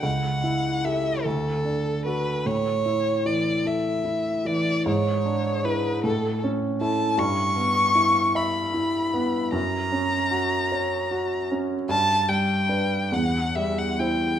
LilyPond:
<<
  \new Staff \with { instrumentName = "Violin" } { \time 6/8 \key a \mixolydian \tempo 4. = 50 fis''4 e''8 a'4 b'8 | cis''4 d''8 e''4 d''8 | cis''4 b'8 a'8 r8 a''8 | \key fis \phrygian cis'''4. b''4. |
ais''2~ ais''8 r8 | a''8 g''4 fis''8 e''16 fis''16 g''8 | }
  \new Staff \with { instrumentName = "Grand piano" } { \time 6/8 \key a \mixolydian cis,8 e'8 <g' a'>8 d,8 d'8 <fis' a'>8 | a,8 e'8 e8 a'8 e'8 e8 | gis,8 d'8 <e' b'>8 a,8 cis'8 <e' a'>8 | \key fis \phrygian g,8 b8 e'8 e''8 e'8 b8 |
fis,8 cis'8 fis'8 cis''8 fis'8 cis'8 | g,8 g8 <d' b'>8 e,8 g8 <e' c''>8 | }
>>